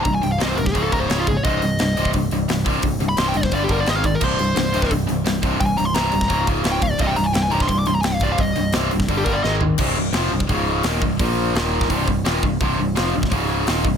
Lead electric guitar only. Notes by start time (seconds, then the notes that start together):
0.04 A#5
0.14 G#5
0.23 G5
0.32 F5
0.42 D#5
0.49 C5
0.56 A#4
0.67 G4
0.73 G#4
0.83 A4
0.92 A#4
1.00 C5
1.10 C#5
1.18 F4
1.28 G#4
1.37 C#5
1.44 D#5
3.09 B5
3.19 C6
3.28 G5
3.37 D#5
3.44 C5
3.55 D5
3.64 G4
3.72 A#4
3.80 D5
3.89 D#5
3.95 F5
4.06 D5
4.15 A#4
4.24 C5
5.60 G5
5.66 G#5
5.77 A#5
5.85 C6
5.94 A#5
6.72 G5
6.83 F5
6.90 D5
7.01 D#5
7.07 G5
7.16 A#5
7.24 G#5
7.33 G5
7.43 G#5
7.51 A#5
7.62 C6
7.68 C6
7.79 D6
7.88 C6
7.95 A#5
8.01 G#5
8.06 G5
8.14 F5
8.23 D5
8.32 F5
8.40 D#5
9.18 G4
9.25 A#4
9.33 D5
9.43 D#5